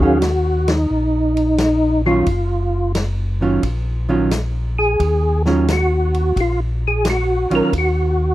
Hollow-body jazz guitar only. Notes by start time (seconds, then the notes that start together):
0.02 D#3 F#3 C#4
2.06 D#3 F#3 C#4 F4
3.41 D#3 F#3 C#4 F4
4.09 D#3 F#3 C#4 F4
5.46 D#3 F#3 C#4 F4
7.50 D#3 F#3 C#4 F4